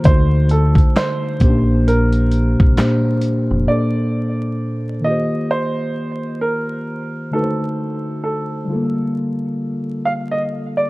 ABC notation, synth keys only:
X:1
M:4/4
L:1/8
Q:"Swing 16ths" 1/4=66
K:Bb
V:1 name="Synth keys"
[D,A,E^Fc]3 [B,,B,_D=DGc]2 z [B,,B,DGc] z | [B,,B,DAc]3 [E,B,FGc]4- [E,B,FGc] | [D,A,E^F_c=c]3 [D,G,B,=FA]4- [D,G,B,FA] |]